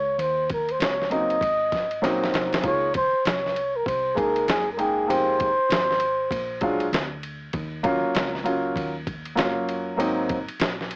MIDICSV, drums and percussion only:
0, 0, Header, 1, 2, 480
1, 0, Start_track
1, 0, Key_signature, -5, "major"
1, 0, Tempo, 612245
1, 151, Time_signature, 4, 2, 24, 8
1, 8591, End_track
2, 0, Start_track
2, 0, Title_t, "Drums"
2, 150, Note_on_c, 9, 51, 66
2, 228, Note_off_c, 9, 51, 0
2, 388, Note_on_c, 9, 51, 54
2, 393, Note_on_c, 9, 36, 92
2, 467, Note_off_c, 9, 51, 0
2, 471, Note_off_c, 9, 36, 0
2, 538, Note_on_c, 9, 51, 42
2, 616, Note_off_c, 9, 51, 0
2, 630, Note_on_c, 9, 44, 39
2, 630, Note_on_c, 9, 51, 61
2, 643, Note_on_c, 9, 38, 112
2, 708, Note_off_c, 9, 44, 0
2, 708, Note_off_c, 9, 51, 0
2, 722, Note_off_c, 9, 38, 0
2, 796, Note_on_c, 9, 38, 35
2, 870, Note_on_c, 9, 51, 52
2, 874, Note_off_c, 9, 38, 0
2, 949, Note_off_c, 9, 51, 0
2, 1019, Note_on_c, 9, 51, 37
2, 1098, Note_off_c, 9, 51, 0
2, 1105, Note_on_c, 9, 36, 96
2, 1116, Note_on_c, 9, 51, 72
2, 1183, Note_off_c, 9, 36, 0
2, 1194, Note_off_c, 9, 51, 0
2, 1348, Note_on_c, 9, 51, 52
2, 1349, Note_on_c, 9, 36, 82
2, 1366, Note_on_c, 9, 38, 36
2, 1427, Note_off_c, 9, 51, 0
2, 1428, Note_off_c, 9, 36, 0
2, 1445, Note_off_c, 9, 38, 0
2, 1496, Note_on_c, 9, 51, 43
2, 1574, Note_off_c, 9, 51, 0
2, 1597, Note_on_c, 9, 44, 44
2, 1597, Note_on_c, 9, 51, 64
2, 1606, Note_on_c, 9, 38, 50
2, 1675, Note_off_c, 9, 44, 0
2, 1675, Note_off_c, 9, 51, 0
2, 1684, Note_off_c, 9, 38, 0
2, 1753, Note_on_c, 9, 38, 62
2, 1831, Note_off_c, 9, 38, 0
2, 1833, Note_on_c, 9, 51, 55
2, 1843, Note_on_c, 9, 38, 87
2, 1911, Note_off_c, 9, 51, 0
2, 1922, Note_off_c, 9, 38, 0
2, 1981, Note_on_c, 9, 51, 38
2, 1992, Note_on_c, 9, 38, 86
2, 2059, Note_off_c, 9, 51, 0
2, 2067, Note_on_c, 9, 51, 73
2, 2068, Note_on_c, 9, 36, 124
2, 2070, Note_off_c, 9, 38, 0
2, 2145, Note_off_c, 9, 51, 0
2, 2147, Note_off_c, 9, 36, 0
2, 2306, Note_on_c, 9, 51, 63
2, 2313, Note_on_c, 9, 36, 106
2, 2384, Note_off_c, 9, 51, 0
2, 2392, Note_off_c, 9, 36, 0
2, 2551, Note_on_c, 9, 44, 46
2, 2551, Note_on_c, 9, 51, 64
2, 2565, Note_on_c, 9, 38, 119
2, 2629, Note_off_c, 9, 44, 0
2, 2629, Note_off_c, 9, 51, 0
2, 2643, Note_off_c, 9, 38, 0
2, 2714, Note_on_c, 9, 38, 37
2, 2793, Note_off_c, 9, 38, 0
2, 2793, Note_on_c, 9, 51, 53
2, 2872, Note_off_c, 9, 51, 0
2, 3028, Note_on_c, 9, 36, 91
2, 3044, Note_on_c, 9, 51, 71
2, 3107, Note_off_c, 9, 36, 0
2, 3123, Note_off_c, 9, 51, 0
2, 3272, Note_on_c, 9, 36, 92
2, 3276, Note_on_c, 9, 51, 53
2, 3350, Note_off_c, 9, 36, 0
2, 3355, Note_off_c, 9, 51, 0
2, 3418, Note_on_c, 9, 51, 44
2, 3497, Note_off_c, 9, 51, 0
2, 3514, Note_on_c, 9, 44, 42
2, 3514, Note_on_c, 9, 51, 69
2, 3525, Note_on_c, 9, 38, 102
2, 3592, Note_off_c, 9, 44, 0
2, 3592, Note_off_c, 9, 51, 0
2, 3603, Note_off_c, 9, 38, 0
2, 3753, Note_on_c, 9, 51, 53
2, 3831, Note_off_c, 9, 51, 0
2, 3999, Note_on_c, 9, 51, 70
2, 4077, Note_off_c, 9, 51, 0
2, 4232, Note_on_c, 9, 51, 59
2, 4238, Note_on_c, 9, 36, 100
2, 4311, Note_off_c, 9, 51, 0
2, 4316, Note_off_c, 9, 36, 0
2, 4473, Note_on_c, 9, 44, 43
2, 4473, Note_on_c, 9, 51, 62
2, 4486, Note_on_c, 9, 38, 122
2, 4551, Note_off_c, 9, 44, 0
2, 4551, Note_off_c, 9, 51, 0
2, 4565, Note_off_c, 9, 38, 0
2, 4632, Note_on_c, 9, 38, 34
2, 4704, Note_on_c, 9, 51, 58
2, 4711, Note_off_c, 9, 38, 0
2, 4782, Note_off_c, 9, 51, 0
2, 4946, Note_on_c, 9, 36, 94
2, 4956, Note_on_c, 9, 51, 71
2, 5024, Note_off_c, 9, 36, 0
2, 5034, Note_off_c, 9, 51, 0
2, 5182, Note_on_c, 9, 51, 51
2, 5189, Note_on_c, 9, 36, 91
2, 5260, Note_off_c, 9, 51, 0
2, 5267, Note_off_c, 9, 36, 0
2, 5333, Note_on_c, 9, 51, 40
2, 5412, Note_off_c, 9, 51, 0
2, 5433, Note_on_c, 9, 44, 45
2, 5433, Note_on_c, 9, 51, 61
2, 5444, Note_on_c, 9, 38, 101
2, 5512, Note_off_c, 9, 44, 0
2, 5512, Note_off_c, 9, 51, 0
2, 5522, Note_off_c, 9, 38, 0
2, 5670, Note_on_c, 9, 51, 52
2, 5749, Note_off_c, 9, 51, 0
2, 5905, Note_on_c, 9, 51, 65
2, 5909, Note_on_c, 9, 36, 123
2, 5983, Note_off_c, 9, 51, 0
2, 5987, Note_off_c, 9, 36, 0
2, 6145, Note_on_c, 9, 51, 58
2, 6154, Note_on_c, 9, 36, 107
2, 6223, Note_off_c, 9, 51, 0
2, 6232, Note_off_c, 9, 36, 0
2, 6388, Note_on_c, 9, 44, 44
2, 6388, Note_on_c, 9, 51, 64
2, 6401, Note_on_c, 9, 38, 127
2, 6466, Note_off_c, 9, 44, 0
2, 6466, Note_off_c, 9, 51, 0
2, 6480, Note_off_c, 9, 38, 0
2, 6548, Note_on_c, 9, 38, 36
2, 6626, Note_off_c, 9, 38, 0
2, 6630, Note_on_c, 9, 51, 57
2, 6709, Note_off_c, 9, 51, 0
2, 6866, Note_on_c, 9, 36, 94
2, 6876, Note_on_c, 9, 51, 77
2, 6944, Note_off_c, 9, 36, 0
2, 6954, Note_off_c, 9, 51, 0
2, 7111, Note_on_c, 9, 36, 99
2, 7113, Note_on_c, 9, 51, 56
2, 7189, Note_off_c, 9, 36, 0
2, 7191, Note_off_c, 9, 51, 0
2, 7256, Note_on_c, 9, 51, 45
2, 7334, Note_off_c, 9, 51, 0
2, 7350, Note_on_c, 9, 44, 43
2, 7350, Note_on_c, 9, 51, 59
2, 7360, Note_on_c, 9, 38, 104
2, 7428, Note_off_c, 9, 44, 0
2, 7428, Note_off_c, 9, 51, 0
2, 7439, Note_off_c, 9, 38, 0
2, 7595, Note_on_c, 9, 51, 55
2, 7673, Note_off_c, 9, 51, 0
2, 7839, Note_on_c, 9, 51, 69
2, 7917, Note_off_c, 9, 51, 0
2, 8071, Note_on_c, 9, 51, 60
2, 8075, Note_on_c, 9, 36, 109
2, 8150, Note_off_c, 9, 51, 0
2, 8154, Note_off_c, 9, 36, 0
2, 8221, Note_on_c, 9, 51, 47
2, 8299, Note_off_c, 9, 51, 0
2, 8309, Note_on_c, 9, 44, 42
2, 8309, Note_on_c, 9, 51, 65
2, 8322, Note_on_c, 9, 38, 127
2, 8387, Note_off_c, 9, 44, 0
2, 8387, Note_off_c, 9, 51, 0
2, 8401, Note_off_c, 9, 38, 0
2, 8474, Note_on_c, 9, 38, 37
2, 8551, Note_on_c, 9, 51, 58
2, 8552, Note_off_c, 9, 38, 0
2, 8591, Note_off_c, 9, 51, 0
2, 8591, End_track
0, 0, End_of_file